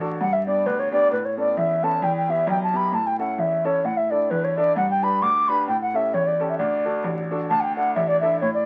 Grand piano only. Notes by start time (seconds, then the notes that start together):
Already playing: A1
0.00 D4 F#4 A4
0.21 G2
0.47 B3 D4 G4
0.66 D2
0.92 B3 D4 G4
1.11 A2
1.37 B3 C#4 A4
1.57 E2
1.83 B3 C#4 A4
2.02 E2
2.28 B3 E4 G4
2.47 B1
2.73 B3 E4 G4
2.92 A2
3.19 C#4 E4 A4
3.38 E2
3.64 C#4 E4 A4
3.84 A2
4.11 D4 E4 A4
4.31 E2
4.57 D4 E4 A4
4.76 G2
5.02 D4 G4 B4
5.22 D2
5.49 D4 G4 B4
5.68 A2
5.94 C#4 G4 A4
6.14 E2
6.40 C#4 G4 A4
6.59 D2
6.85 D4 F#4 A4
7.04 A1
7.31 D4 F#4 A4
7.50 D2
7.77 D4 E4 A4
7.96 A1
8.22 D4 E4 A4
8.42 A2